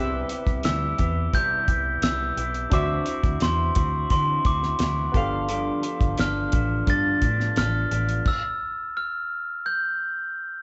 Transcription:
0.00 0.23 C2 medium
0.00 0.29 C3 medium
0.00 0.30 G3 medium
0.00 0.30 B3 medium
0.00 2.67 C4 medium
0.00 0.29 E4 medium
0.00 0.28 G4 loud
0.00 2.67 G4 medium
0.00 2.68 B4 medium
0.00 2.69 E5 medium
0.29 0.63 B3 soft
0.29 0.64 E4 medium
0.29 0.64 G4 medium
0.29 closed hi-hat medium
0.47 0.60 C2 medium
0.47 kick medium
0.47 closed hi-hat soft
0.63 0.92 D2 medium
0.63 0.99 G3 medium
0.63 0.99 B3 medium
0.63 0.98 E4 medium
0.63 0.97 G4 medium
0.63 1.36 E6 medium
0.63 snare loud
0.63 closed hi-hat medium
0.98 1.27 E2 medium
0.98 1.33 B3 soft
0.98 1.33 E4 soft
0.98 1.33 G4 soft
0.98 kick medium
0.98 closed hi-hat medium
1.33 1.68 C3 medium
1.33 1.61 C3 medium
1.33 1.68 G3 medium
1.33 1.68 B3 medium
1.33 1.68 E4 medium
1.33 1.66 G4 medium
1.33 2.05 G6 loud
1.33 kick medium
1.33 closed hi-hat medium
1.68 1.96 C2 medium
1.68 2.03 B3 soft
1.68 2.03 E4 soft
1.68 2.02 G4 medium
1.68 kick medium
1.68 closed hi-hat medium
2.02 2.30 C2 medium
2.02 2.37 G3 soft
2.02 2.38 B3 medium
2.02 2.37 E4 medium
2.02 2.36 G4 medium
2.02 2.74 E6 medium
2.02 snare loud
2.02 closed hi-hat medium
2.37 2.65 B1 medium
2.37 2.72 B3 soft
2.37 2.72 E4 soft
2.37 2.72 G4 medium
2.37 closed hi-hat medium
2.54 closed hi-hat soft
2.70 2.99 D2 medium
2.70 3.07 D3 medium
2.70 3.07 E3 medium
2.70 3.07 C4 medium
2.70 5.09 D4 medium
2.70 3.06 E4 medium
2.70 5.10 F#4 medium
2.70 3.05 F#4 medium
2.70 5.11 C5 medium
2.70 3.44 D6 medium
2.70 kick loud
2.70 closed hi-hat medium
2.75 5.12 E5 medium
3.06 3.40 C4 soft
3.06 3.41 E4 soft
3.06 3.41 F#4 medium
3.06 closed hi-hat medium
3.24 3.38 D2 medium
3.24 kick medium
3.24 closed hi-hat soft
3.40 3.69 E2 medium
3.40 3.75 E3 medium
3.40 3.76 C4 medium
3.40 3.75 E4 medium
3.40 3.74 F#4 medium
3.40 4.10 C6 medium
3.40 snare loud
3.40 closed hi-hat medium
3.75 4.04 D2 medium
3.75 4.10 C4 soft
3.75 4.11 E4 soft
3.75 4.10 F#4 medium
3.75 kick loud
3.75 closed hi-hat medium
4.10 4.45 D3 medium
4.10 4.38 D3 medium
4.10 4.45 E3 medium
4.10 4.46 C4 medium
4.10 4.45 E4 medium
4.10 4.43 F#4 medium
4.10 4.47 C6 medium
4.10 kick medium
4.10 closed hi-hat medium
4.44 4.73 D2 medium
4.44 4.79 C4 soft
4.44 4.79 E4 soft
4.44 4.79 F#4 soft
4.44 5.11 D6 medium
4.44 kick medium
4.44 closed hi-hat medium
4.63 snare soft
4.79 5.07 D2 medium
4.79 5.14 E3 medium
4.79 5.14 C4 medium
4.79 5.14 E4 medium
4.79 5.14 F#4 medium
4.79 snare loud
4.79 closed hi-hat medium
5.12 5.70 G1 medium
5.12 7.86 B3 medium
5.12 5.48 B3 soft
5.12 5.48 D4 soft
5.12 7.87 G4 medium
5.12 5.49 A4 medium
5.12 7.88 A4 medium
5.12 kick medium
5.12 closed hi-hat medium
5.16 5.48 F3 soft
5.16 7.89 F5 medium
5.48 5.83 G2 medium
5.48 5.84 D3 medium
5.48 5.84 F3 medium
5.48 5.83 B3 medium
5.48 5.82 D4 medium
5.48 5.81 A4 medium
5.48 closed hi-hat medium
5.82 6.16 F3 soft
5.82 6.16 B3 soft
5.82 6.17 D4 medium
5.82 6.18 A4 medium
5.82 closed hi-hat medium
6.01 6.15 G1 loud
6.01 kick medium
6.01 closed hi-hat soft
6.17 6.46 G1 loud
6.17 6.52 F3 medium
6.17 6.52 B3 medium
6.17 6.51 D4 medium
6.17 6.50 A4 medium
6.17 6.91 F6 medium
6.17 snare loud
6.17 closed hi-hat medium
6.52 6.81 A1 medium
6.52 6.86 F3 soft
6.52 6.86 B3 medium
6.52 6.87 D4 soft
6.52 6.87 A4 medium
6.52 kick medium
6.52 closed hi-hat medium
6.87 7.22 G2 medium
6.87 7.15 G2 medium
6.87 7.22 D3 medium
6.87 7.22 F3 medium
6.87 7.22 B3 medium
6.87 7.21 D4 medium
6.87 7.20 A4 medium
6.87 7.54 A6 loud
6.87 kick medium
6.87 closed hi-hat medium
7.21 7.50 A2 medium
7.21 7.55 F3 soft
7.21 7.56 B3 soft
7.21 7.57 D4 soft
7.21 7.56 A4 medium
7.21 kick medium
7.21 closed hi-hat medium
7.40 snare soft
7.56 7.84 A1 loud
7.56 7.91 F3 medium
7.56 7.91 B3 medium
7.56 7.90 D4 medium
7.56 7.90 A4 medium
7.56 8.23 F6 medium
7.56 snare loud
7.56 closed hi-hat medium
7.91 8.19 A1 medium
7.91 8.27 F3 soft
7.91 8.27 B3 soft
7.91 8.26 D4 soft
7.91 8.26 A4 soft
7.91 closed hi-hat medium
8.09 closed hi-hat soft
8.25 8.98 E6 medium
8.25 kick medium
8.25 crash medium
8.97 9.67 F6 medium
9.66 10.62 G6 medium

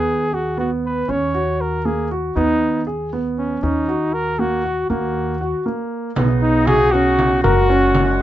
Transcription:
0.00 1.06 D#2 medium
0.00 0.25 B3 medium
0.00 0.36 G#4 medium
0.32 0.59 F#4 medium
0.32 0.54 G#4 medium
0.58 1.01 B3 medium
0.58 0.71 F#4 medium
0.86 1.12 B4 medium
1.08 2.34 D#2 medium
1.08 1.30 C#4 medium
1.08 1.62 C#5 medium
1.34 1.78 F#4 medium
1.61 1.87 A#4 medium
1.85 2.07 A#3 medium
1.85 2.11 G#4 medium
2.11 2.33 F#4 medium
2.36 3.61 D#2 medium
2.36 2.80 B3 medium
2.36 2.84 D#4 medium
2.87 3.09 G#4 medium
3.13 3.56 B3 medium
3.38 3.65 C#4 medium
3.63 4.88 D#2 medium
3.63 3.85 C#4 medium
3.63 4.15 D#4 medium
3.88 4.32 F#4 medium
4.14 4.41 A#4 medium
4.39 4.61 A#3 medium
4.39 4.89 F#4 medium
4.64 4.86 F#4 medium
4.90 5.52 D#2 medium
4.90 5.33 A#3 medium
4.90 5.62 F#4 medium
5.41 5.63 F#4 medium
5.66 6.09 A#3 medium
6.16 7.42 B1 medium
6.16 7.42 C#3 medium
6.16 7.43 B3 medium
6.16 6.60 B3 medium
6.16 7.42 D#4 medium
6.16 frame drum medium
6.42 6.68 D#4 medium
6.42 frame drum soft
6.67 6.89 F#4 medium
6.67 6.93 G#4 loud
6.67 frame drum medium
6.92 7.37 C#4 medium
6.92 7.43 F#4 medium
7.19 frame drum medium
7.43 8.22 F#1 medium
7.43 8.22 A#2 medium
7.43 8.22 G#3 medium
7.43 8.22 F#4 loud
7.43 8.22 F#4 medium
7.43 7.66 A#4 medium
7.43 frame drum medium
7.69 8.13 C#4 medium
7.69 frame drum soft
7.95 frame drum medium

